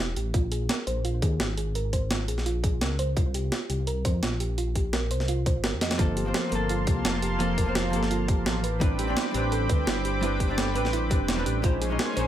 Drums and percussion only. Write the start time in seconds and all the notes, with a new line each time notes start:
0.16 closed hi-hat
0.34 kick, closed hi-hat
0.52 closed hi-hat
0.69 snare, closed hi-hat
0.87 closed hi-hat
1.05 closed hi-hat
1.22 kick, closed hi-hat
1.40 snare, closed hi-hat
1.57 closed hi-hat
1.75 closed hi-hat
1.93 kick, closed hi-hat
2.11 snare, closed hi-hat
2.28 closed hi-hat
2.38 snare
2.46 closed hi-hat
2.64 kick, closed hi-hat
2.81 snare, closed hi-hat
2.99 closed hi-hat
3.17 kick, closed hi-hat
3.34 closed hi-hat
3.52 snare, closed hi-hat
3.70 closed hi-hat
3.87 closed hi-hat
4.05 kick, closed hi-hat
4.23 snare, closed hi-hat
4.40 closed hi-hat
4.58 closed hi-hat
4.75 kick, closed hi-hat
4.93 snare, closed hi-hat
5.11 closed hi-hat
5.20 snare
5.28 closed hi-hat
5.46 kick, closed hi-hat
5.64 snare, closed hi-hat
5.81 snare, closed hi-hat
5.91 snare
5.99 kick, closed hi-hat
6.17 closed hi-hat
6.34 snare, closed hi-hat
6.52 closed hi-hat
6.69 closed hi-hat
6.87 kick, closed hi-hat
7.05 snare, closed hi-hat
7.22 closed hi-hat
7.40 closed hi-hat
7.58 kick, closed hi-hat
7.75 snare, closed hi-hat
7.93 closed hi-hat
8.03 snare
8.11 closed hi-hat
8.28 kick, closed hi-hat
8.46 snare, closed hi-hat
8.64 closed hi-hat
8.81 kick, closed hi-hat
8.99 closed hi-hat
9.17 snare, closed hi-hat
9.34 closed hi-hat
9.52 closed hi-hat
9.69 kick, closed hi-hat
9.87 snare, closed hi-hat
10.05 closed hi-hat
10.23 closed hi-hat
10.40 kick, closed hi-hat
10.58 snare, closed hi-hat
10.76 closed hi-hat
10.85 snare
10.93 closed hi-hat
11.11 kick, closed hi-hat
11.28 snare, closed hi-hat
11.46 closed hi-hat
11.64 kick, closed hi-hat
11.82 closed hi-hat
11.99 snare, closed hi-hat
12.17 closed hi-hat